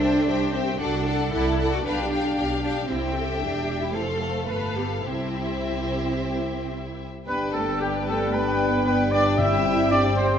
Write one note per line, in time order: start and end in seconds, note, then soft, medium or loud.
0.00 0.22 C2 medium
0.00 0.53 D4 medium
0.00 0.28 A4 medium
0.00 0.26 C5 soft
0.00 0.26 E5 soft
0.00 0.27 G5 soft
0.27 0.73 C2 medium
0.27 0.80 G4 medium
0.27 0.50 C5 soft
0.27 0.51 E5 soft
0.27 0.53 G5 soft
0.52 0.79 C4 medium
0.52 0.78 C5 soft
0.52 0.78 E5 soft
0.52 0.79 G5 soft
0.78 1.26 C2 medium
0.78 1.32 D4 medium
0.78 1.05 F#4 medium
0.78 1.05 A4 soft
0.78 1.04 D5 soft
0.78 1.05 F#5 medium
1.05 1.31 A4 soft
1.05 1.84 A4 medium
1.05 1.31 D5 soft
1.05 1.31 F#5 soft
1.32 1.79 C2 medium
1.32 1.70 E4 medium
1.32 1.58 A4 soft
1.32 1.58 D5 soft
1.32 1.57 F#5 soft
1.59 1.84 A4 soft
1.59 1.84 D5 soft
1.59 1.84 F#5 soft
1.72 1.77 F#4 medium
1.84 2.31 B1 medium
1.84 2.61 D4 medium
1.84 2.11 G4 soft
1.84 2.11 B4 soft
1.84 2.11 F5 soft
1.84 2.10 G5 soft
2.11 2.87 G4 medium
2.11 2.37 G4 soft
2.11 2.37 F5 soft
2.11 2.35 G5 soft
2.36 2.83 B1 soft
2.36 2.63 G4 soft
2.36 2.63 F5 soft
2.36 2.61 G5 soft
2.62 2.88 D4 medium
2.62 2.89 G4 soft
2.62 2.89 F5 soft
2.62 2.87 G5 soft
2.88 3.38 C2 soft
2.88 3.40 C4 medium
2.88 3.15 E4 soft
2.88 3.91 G4 soft
2.88 3.91 E5 soft
2.88 3.90 G5 soft
3.15 3.41 A4 soft
3.40 3.94 E1 soft
3.40 3.79 D4 medium
3.40 3.94 G4 soft
3.80 3.94 E4 medium
3.93 4.48 F1 soft
3.93 4.76 A3 medium
3.93 4.47 A4 soft
3.93 4.49 A4 soft
3.93 4.49 C5 soft
3.93 4.48 F5 soft
4.48 5.04 G1 soft
4.48 5.03 A4 soft
4.48 5.05 B4 soft
4.48 4.76 B4 soft
4.48 5.04 F5 soft
4.76 4.84 B3 medium
4.76 5.05 G4 soft
5.03 7.07 C2 soft
5.03 6.69 C4 medium
5.03 6.97 E4 soft
5.03 7.08 G4 soft
5.03 7.08 C5 soft
5.03 7.08 E5 soft
7.27 10.39 G1 soft
7.27 10.39 G3 soft
7.27 9.34 B3 soft
7.27 7.36 B3 medium
7.27 9.34 D4 soft
7.27 10.39 G4 soft
7.27 7.52 B4 medium
7.27 7.52 B4 soft
7.27 9.34 B4 soft
7.27 7.40 B4 medium
7.27 10.39 G5 soft
7.54 7.62 A3 soft
7.54 7.80 A4 medium
7.54 7.81 A4 medium
7.54 7.80 A4 medium
7.80 8.07 G3 soft
7.80 8.07 G4 medium
7.80 7.93 G4 medium
8.08 8.34 A3 soft
8.08 8.35 A4 medium
8.08 8.34 A4 soft
8.08 8.34 A4 medium
8.33 8.85 B3 medium
8.33 8.86 B4 medium
8.33 8.86 B4 soft
8.33 8.85 B4 medium
8.86 9.12 B3 medium
8.86 8.98 B4 medium
8.86 9.13 B4 medium
8.86 9.12 B4 medium
9.12 9.38 D4 medium
9.12 9.39 D5 medium
9.12 9.24 D5 medium
9.12 9.39 D5 medium
9.38 10.12 G2 medium
9.38 10.39 C4 medium
9.38 10.39 C4 soft
9.38 10.39 C4 medium
9.38 9.90 E4 medium
9.38 10.39 G4 soft
9.38 9.90 E5 medium
9.38 9.89 E5 medium
9.38 9.90 E5 medium
9.90 10.16 D4 medium
9.90 10.02 D5 medium
9.90 10.03 D5 medium
9.90 10.17 D5 medium
10.16 10.39 C4 medium
10.16 10.39 C5 medium
10.16 10.29 C5 medium
10.16 10.26 C5 medium